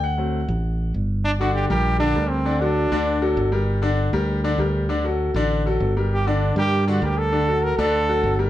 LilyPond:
<<
  \new Staff \with { instrumentName = "Trombone" } { \time 4/4 \key g \minor \tempo 4 = 198 r1 | d'8 fis'8 g'8 g'4 d'4 c'8~ | c'8 d'2. r8 | r1 |
r1 | g'8 d'4 g'4 fis'8 g'8 a'8~ | a'4 bes'8 a'2 r8 | }
  \new Staff \with { instrumentName = "Grand piano" } { \time 4/4 \key g \minor fis''2. r4 | r8 <d d' d''>4 <g g' bes'>4 <d d' d''>8 <g g' bes'>4 | <d d' d''>8 <fis fis' a'>4 <d d' d''>4 <fis fis' a'>4 <g g' bes'>8~ | <g g' bes'>8 <d d' d''>4 <g g' bes'>4 <d d' d''>8 <g g' bes'>4 |
<d d' d''>8 <fis fis' a'>4 <d d' d''>4 <fis fis' a'>4 <g g' bes'>8~ | <g g' bes'>8 <d d' d''>4 <g g' bes'>4 <d d' d''>8 <g g' bes'>4 | <d d' d''>8 <fis fis' a'>4 <d d' d''>4 <fis fis' a'>4 <g g' bes'>8 | }
  \new Staff \with { instrumentName = "Grand piano" } { \time 4/4 \key g \minor r8 <fis a c'>8 r2. | r1 | r1 | r1 |
r1 | r1 | r1 | }
  \new Staff \with { instrumentName = "Fingered electric bass" } { \clef bass \time 4/4 \key g \minor d,4. a,,4. g,,4~ | g,,4. bes,,4. d,4~ | d,4. d,4. g,,4~ | g,,4. d,4. d,4~ |
d,4. a,,4. g,,4~ | g,,4. g,4. d,4~ | d,4. d,4. g,,4 | }
>>